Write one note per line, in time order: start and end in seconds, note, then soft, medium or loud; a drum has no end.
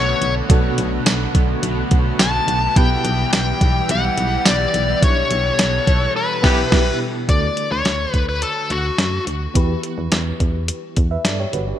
0.00 0.14 B1 loud
0.00 0.47 B2 medium
0.00 0.50 B2 medium
0.00 2.72 D3 medium
0.00 0.50 F#3 medium
0.00 2.72 A3 medium
0.00 0.45 B3 medium
0.00 0.53 B3 medium
0.00 7.25 B3 medium
0.00 0.45 D4 medium
0.00 1.19 D4 medium
0.00 0.46 F#4 medium
0.00 2.72 F#4 medium
0.00 0.46 A4 medium
0.00 0.33 C#5 medium
0.21 0.42 B1 loud
0.21 closed hi-hat medium
0.48 0.70 B1 loud
0.48 1.61 B2 medium
0.48 1.31 B2 medium
0.48 1.63 F#3 medium
0.48 2.71 B3 medium
0.48 2.72 D4 medium
0.48 2.72 F#4 medium
0.48 2.73 A4 medium
0.48 kick loud
0.48 closed hi-hat loud
0.53 1.65 B3 loud
0.78 0.98 B1 loud
0.78 closed hi-hat medium
1.06 1.27 B1 loud
1.06 snare loud
1.06 closed hi-hat loud
1.06 tambourine medium
1.35 1.55 B1 loud
1.35 kick medium
1.35 closed hi-hat medium
1.62 1.83 B1 loud
1.62 2.18 B2 medium
1.62 2.19 F#3 medium
1.62 2.22 B3 medium
1.62 closed hi-hat loud
1.91 2.12 B1 loud
1.91 kick medium
1.91 closed hi-hat medium
2.19 2.40 B1 loud
2.19 2.76 B2 medium
2.19 2.74 F#3 medium
2.19 2.77 B3 medium
2.19 2.77 A5 loud
2.19 snare loud
2.19 closed hi-hat loud
2.19 tambourine medium
2.48 2.68 B1 loud
2.48 closed hi-hat medium
2.75 2.97 B1 loud
2.75 3.57 B2 medium
2.75 3.87 E3 medium
2.75 7.25 E3 medium
2.75 7.25 G3 medium
2.75 4.98 B3 medium
2.75 3.89 B3 medium
2.75 4.98 E4 medium
2.75 5.00 G4 medium
2.75 4.99 G4 medium
2.75 4.99 B4 medium
2.75 3.29 G5 loud
2.75 kick loud
2.75 closed hi-hat loud
2.80 3.91 E4 medium
3.05 3.25 B1 loud
3.05 closed hi-hat medium
3.33 3.53 B1 loud
3.33 3.91 G5 medium
3.33 snare loud
3.33 closed hi-hat loud
3.33 tambourine medium
3.61 3.81 B1 loud
3.61 kick medium
3.61 closed hi-hat medium
3.89 4.10 B1 loud
3.89 4.44 E3 medium
3.89 4.46 B3 medium
3.89 4.47 E4 medium
3.89 4.49 F#5 loud
3.89 closed hi-hat loud
4.17 4.38 B1 loud
4.17 closed hi-hat medium
4.45 4.66 B1 loud
4.45 5.01 E3 medium
4.45 5.02 B3 medium
4.45 5.03 E4 medium
4.45 5.04 D5 medium
4.45 snare loud
4.45 closed hi-hat loud
4.45 tambourine medium
4.74 4.95 B1 medium
4.74 closed hi-hat medium
5.01 5.23 B1 loud
5.01 5.83 B2 medium
5.01 5.87 E3 medium
5.01 6.13 B3 medium
5.01 5.88 B3 medium
5.01 6.14 D4 medium
5.01 6.13 E4 medium
5.01 5.86 E4 medium
5.01 6.13 G4 medium
5.01 7.27 A4 medium
5.01 6.12 C#5 medium
5.01 kick loud
5.01 closed hi-hat loud
5.31 5.51 B1 loud
5.31 closed hi-hat medium
5.59 5.79 B1 loud
5.59 snare loud
5.59 closed hi-hat loud
5.59 tambourine medium
5.87 6.08 B1 medium
5.87 6.17 B3 soft
5.87 6.15 E4 medium
5.87 kick medium
5.87 closed hi-hat medium
6.17 6.97 B4 medium
6.42 6.63 B1 loud
6.42 6.63 B2 loud
6.42 6.63 E3 loud
6.42 6.58 E3 loud
6.42 6.62 B3 loud
6.42 6.58 B3 loud
6.42 6.63 B3 loud
6.42 6.63 E4 loud
6.42 6.64 E4 loud
6.42 6.58 G4 loud
6.42 6.63 G4 loud
6.42 kick loud
6.42 snare loud
6.42 crash medium
6.71 6.91 B1 loud
6.71 6.91 B2 loud
6.71 6.91 E3 loud
6.71 6.91 B3 loud
6.71 6.92 B3 loud
6.71 6.91 E4 loud
6.71 6.92 E4 loud
6.71 6.92 G4 medium
6.71 kick loud
6.71 snare loud
6.71 crash medium
7.28 7.49 D2 medium
7.28 8.10 D3 medium
7.28 9.51 A3 medium
7.28 9.51 D4 medium
7.28 9.52 F#4 medium
7.28 9.52 A4 medium
7.28 7.69 D5 medium
7.28 kick loud
7.28 closed hi-hat loud
7.57 closed hi-hat medium
7.71 7.82 D2 medium
7.71 8.13 C#5 medium
7.85 8.06 D2 medium
7.85 snare loud
7.85 closed hi-hat medium
8.13 8.44 D2 medium
8.13 8.24 B4 medium
8.13 kick medium
8.13 closed hi-hat medium
8.29 8.43 B4 medium
8.42 8.72 A4 medium
8.42 closed hi-hat loud
8.70 8.91 D2 loud
8.70 9.23 F#4 medium
8.70 closed hi-hat medium
8.98 9.19 F#2 medium
8.98 snare loud
8.98 closed hi-hat medium
9.27 9.47 D2 medium
9.27 closed hi-hat medium
9.54 9.76 E2 loud
9.54 10.36 E3 medium
9.54 11.77 B3 medium
9.54 10.94 E4 medium
9.54 10.94 G4 medium
9.54 10.95 B4 medium
9.54 kick loud
9.54 closed hi-hat medium
9.83 closed hi-hat medium
9.98 10.08 E2 loud
10.12 10.32 E2 medium
10.12 snare loud
10.12 closed hi-hat medium
10.40 10.71 E2 loud
10.40 kick medium
10.40 closed hi-hat medium
10.68 closed hi-hat loud
10.96 11.17 E2 loud
10.96 kick medium
10.96 closed hi-hat medium
11.11 11.25 B4 medium
11.11 11.24 E5 medium
11.25 11.45 G2 medium
11.25 11.39 A4 medium
11.25 11.38 D5 medium
11.25 snare loud
11.25 closed hi-hat medium
11.40 11.53 G4 medium
11.40 11.53 C#5 medium
11.53 11.74 G1 medium
11.53 11.67 F#4 medium
11.53 11.67 B4 medium
11.53 closed hi-hat medium
11.68 11.79 D4 medium
11.68 11.79 G4 medium